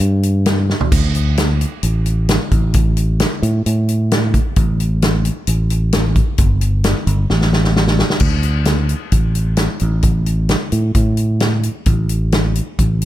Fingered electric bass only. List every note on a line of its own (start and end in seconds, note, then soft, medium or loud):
0.00 0.72 G2 loud
0.92 1.64 D2 medium
1.83 2.37 A1 medium
2.52 3.24 A1 loud
3.42 3.61 A2 loud
3.66 4.38 A2 loud
4.57 5.29 A1 loud
5.48 6.20 A1 loud
6.39 6.93 G1 loud
7.07 7.25 G1 loud
7.30 8.02 A1 loud
8.21 8.93 D2 loud
9.12 9.67 A1 medium
9.82 10.54 A1 loud
10.72 10.91 A2 medium
10.95 11.68 A2 loud
11.87 12.59 A1 loud
12.79 13.05 A1 medium